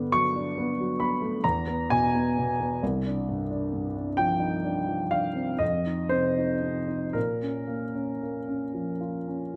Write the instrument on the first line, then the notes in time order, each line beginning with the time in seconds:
grand piano
Already playing: G2 D3 B3
0.12 F#3 C#6
0.35 D4
0.58 B3
0.80 F#3
1.00 B3 B5
1.22 A3
1.44 E2 A#5
1.67 B3
1.90 B2 G#5
2.15 B3
2.38 B2
2.60 B3
2.83 C2
3.06 D4
3.29 G2
3.50 D4
3.73 G2
3.96 D4
4.17 F3 G5
4.39 D#4
4.64 D4
4.88 F3
5.11 D4 F5
5.35 C4
5.59 F2 D#5
5.86 D#4
6.09 C3 C5
6.37 D#4
6.62 C3
6.88 D#4
7.13 A#2 A#4
7.42 C#4
7.67 A#3
7.95 C#4
8.23 A#3
8.48 C#4
8.74 F3
9.00 F4
9.28 C#4